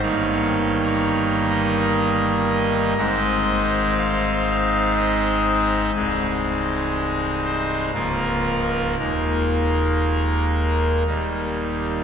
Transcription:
X:1
M:3/4
L:1/8
Q:1/4=60
K:Ab
V:1 name="Pipe organ"
d3 e3 | e2 f2 e2 | A3 c B2 | B4 z2 |]
V:2 name="Pipe organ" clef=bass
[G,,,G,,E,B,E]6 | [A,,,A,,A,CE]6 | [C,,,C,,A,CE]4 [D,,,D,,F,B,F]2 | [E,,,E,,A,B,E]4 [E,,,E,,G,B,E]2 |]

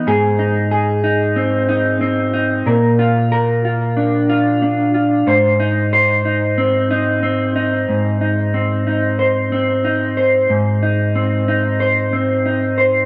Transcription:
X:1
M:4/4
L:1/8
Q:1/4=92
K:Ablyd
V:1 name="Clean electric guitar"
[A,,A] E A E C E C E | [B,,B] F B F D F D F | [A,,c] E c E C E C E | A,, E C E c C E c |
A,, E C E c C E c |]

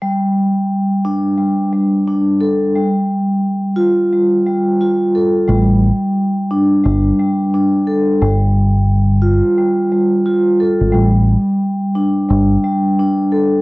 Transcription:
X:1
M:4/4
L:1/16
Q:"Swing 16ths" 1/4=88
K:Gmix
V:1 name="Vibraphone"
G,6 D2 G,2 G,2 D2 A2 | G,6 F2 G,2 G,2 F2 A2 | G,6 D2 G,2 G,2 D2 A2 | G,6 F2 G,2 G,2 F2 A2 |
G,6 D2 G,2 G,2 D2 A2 |]
V:2 name="Fingered electric bass" clef=bass
z16 | z16 | A,,,3 z4 z G,,,2 z6 | G,,,6- G,,, z8 ^G,,, |
A,,,3 z4 z G,,,2 z6 |]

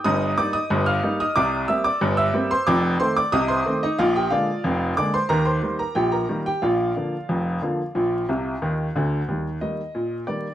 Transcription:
X:1
M:2/4
L:1/16
Q:1/4=91
K:Eb
V:1 name="Upright piano"
[ebe']2 [dd'] [ee']2 [ff']2 [ee'] | [dd']2 [=e=e'] [dd']2 [ee']2 [cc'] | [dd']2 [cc'] [dd'] [ee'] [cc']2 [Ee] | [Ff] [Gg] [Fdf]4 [dd'] [cc'] |
[Bb] [cc']2 [Bb] [Gg] [Bb]2 [Gg] | [Fdf]8- | [Fdf]6 z2 | z2 e4 d2 |]
V:2 name="Upright piano" clef=bass
[G,,,G,,]2 [G,B,E]2 [G,,,G,,]2 [G,B,E]2 | [C,,C,]2 [G,B,C]2 [G,,,G,,]2 [G,B,C]2 | [F,,,F,,]2 [E,=A,C]2 [C,,C,]2 [E,A,C]2 | [B,,,B,,]2 [D,A,B,]2 [F,,,F,,]2 [D,A,B,]2 |
[E,,E,]2 [E,G,B,]2 [B,,,B,,]2 [E,G,B,]2 | [B,,,B,,]2 [D,F,B,]2 [F,,,F,,]2 [D,F,B,]2 | [B,,,B,,]2 [C,,C,]2 [E,,E,]2 [D,,D,]2 | [E,,G,]2 [E,G,B,]2 B,,2 [E,G,B,]2 |]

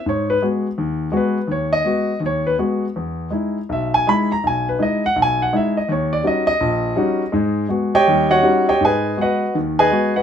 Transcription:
X:1
M:4/4
L:1/8
Q:"Swing" 1/4=164
K:G#m
V:1 name="Grand piano"
c B z4 B2 | c d3 c B z2 | z4 e g b a | g B d f g f e d |
c =d ^d d4- d | z3 [=Gcd=g]2 [Fcdf]2 [Gcdg] | [GBdg]2 [FBdf]2 z [GBdg]2 [FBdf] |]
V:2 name="Grand piano"
G,,2 [G,B,F] z D,,2 [G,B,F] z | D,,2 [G,B,F] z D,,2 [G,B,F] z | E,,2 [G,DE] z B,,,2 [G,DE] z | B,,,2 [G,DE] z B,,,2 [G,DE] z |
D,,2 [=G,CDF] z A,,,2 [G,CDF] z | [G,,G,]2 [G,B,F] z [D,,=G,]2 [G,CDF] z | G,,2 [G,B,F] z [D,,D,]2 [G,B,F] z |]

